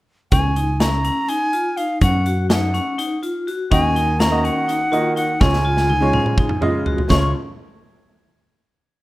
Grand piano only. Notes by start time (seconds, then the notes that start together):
3.70 D#3 A#3 F#4 D#5
4.30 D#3 A#3 F#4 D#5
4.92 D#3 A#3 F#4 D#5
5.40 C#3 G#3 F4 C#5
6.00 C#3 G#3 F4 C#5
6.61 C#3 G#3 F4 D#5
7.09 C#3 G#3 F4 C#5